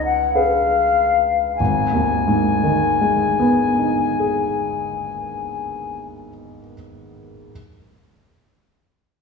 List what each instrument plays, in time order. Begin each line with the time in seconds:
Already playing: grand piano C#2 D#4
0.05 flute F#5
0.34 grand piano G#4 B4, flute F5
1.56 grand piano G#1, flute G#5
1.93 grand piano D#2
2.28 grand piano G#2
2.63 grand piano D#3
3.01 grand piano G#3
3.40 grand piano B3
3.78 grand piano D#4
4.19 grand piano G#4